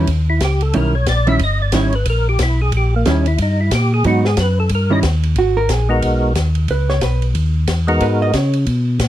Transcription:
0.07 D#2, kick, ride
0.30 E4
0.40 C#2 G4, kick, snare, hi-hat pedal, ride
0.61 A4, ride
0.73 B1 D#3 G3 C#4 E4 A#4, kick, ride
0.95 C#5
1.06 A#1 D5, kick, snare, hi-hat pedal, ride
1.27 D#3 G3 C#4 E4 E5, ride
1.39 G1, kick, ride
1.44 D#5
1.62 D5
1.72 G#1 D#3 G3 C#4 E4, kick, snare, hi-hat pedal, ride
1.76 C#5
1.93 B4, ride
2.05 A#1, kick, ride
2.10 A#4
2.29 G4
2.39 B1, kick, snare, hi-hat pedal, ride
2.43 E4
2.62 G#4
2.72 A#1, kick, ride
2.77 G4
2.96 A#3
3.05 D#2 D#3 G3 C#4 E4, kick, snare, hi-hat pedal, ride
3.26 E4, ride
3.38 G2 D#4, kick, ride
3.61 E4
3.71 A#2 G4, kick, snare, hi-hat pedal, ride
3.94 G#4
4.04 G#2 F#3 B3 D#4 F#4, kick, ride
4.25 G#4, snare
4.37 F#2 B4, kick, snare, hi-hat pedal, ride
4.60 A4
4.69 G2, kick, ride
4.75 A#4
4.90 D#3 G3 C#4 E4 D#5
5.03 D#2, kick, snare, hi-hat pedal, ride
5.23 ride
5.36 G#1 F#4, kick, ride
5.57 A#4
5.69 A#1 G#4, kick, snare, hi-hat pedal, ride
5.89 G#3 B3 D#4 F#4 A#4
6.02 B1, kick, ride
6.35 D#2, kick, snare, hi-hat pedal, ride
6.55 ride
6.68 C#2 B4, kick, ride
6.89 C#5, snare
7.01 B1 B4, kick, snare, hi-hat pedal, ride
7.22 ride
7.35 D#2, kick, ride
7.67 E2, kick, snare, hi-hat pedal, ride
7.87 G#3 B3 D#4 F#4 A#4, ride
8.01 G#2 B4, kick, ride
8.22 D#5
8.33 C#3 C#5, kick, snare, hi-hat pedal, ride
8.53 ride
8.66 B2, kick, ride
8.99 A#2, kick, snare, hi-hat pedal, ride

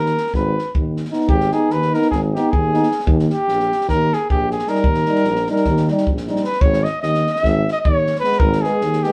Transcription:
Already playing: D#2 A#4
0.06 snare
0.17 snare
0.27 snare
0.34 G#1 B4, kick, snare
0.59 snare
0.75 D#2, kick
0.97 snare
1.05 snare
1.11 B3 D#4, snare
1.21 snare
1.28 G#1 G4, kick
1.40 snare
1.52 B3 D#4 G#4, snare
1.70 D#2 B4, snare
1.82 snare
1.93 B3 D#4 A#4, snare
2.02 snare
2.11 G#1 G#4, kick, snare
2.34 B3 D#4 G4, snare
2.50 D#2 G#4, kick
2.74 B3 D#4, snare
2.83 snare
2.91 snare
3.00 snare
3.06 D#2, kick
3.19 snare
3.30 G4, snare
3.47 A#1, snare
3.60 snare
3.72 snare
3.81 snare
3.88 D#2 A#4, kick, snare
4.13 G#4, snare
4.30 A#1 G4, kick
4.51 G#4, snare
4.59 snare
4.67 G3 D#4 A#4, snare
4.75 snare
4.83 D#2, kick
4.94 snare
5.06 G3 D#4, snare
5.15 snare
5.24 A#1, snare
5.36 snare
5.47 G3 D#4, snare
5.51 A#4
5.56 snare
5.64 D#2, kick, snare
5.77 snare
5.88 G3 D#4, snare
5.98 snare
6.07 A#1, kick
6.17 snare
6.27 G3 D#4, snare
6.36 snare
6.44 B4, snare
6.52 snare
6.61 G#1 C#5, kick
6.73 snare
6.84 D#5, snare
7.02 D#2 D#5, snare
7.14 snare
7.27 snare
7.32 D#5, snare
7.43 G#1 E5, kick, snare
7.68 snare
7.72 D#5
7.81 D#2 C#5, kick
8.07 snare
8.16 snare
8.20 G#3 B3 B4
8.24 snare
8.32 snare
8.39 G#1 A#4, kick
8.53 snare
8.62 G#3 B3 G#4, snare
8.81 D#2, snare
8.93 snare
9.03 G#3 B3 G4, snare

